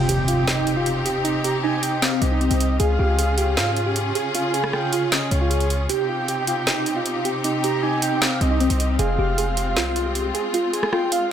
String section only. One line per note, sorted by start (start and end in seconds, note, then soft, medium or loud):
0.00 2.77 C3 medium
0.00 2.77 C4 medium
0.00 2.77 D#4 medium
0.00 2.77 G4 loud
2.80 5.86 C#3 medium
2.80 5.86 C#4 medium
2.80 5.86 F4 medium
2.80 5.86 G#4 medium
5.89 8.96 C3 medium
5.89 11.32 C4 medium
5.89 8.96 D#4 medium
5.89 8.96 G4 medium
8.99 11.32 G#3 medium
8.99 11.32 F4 medium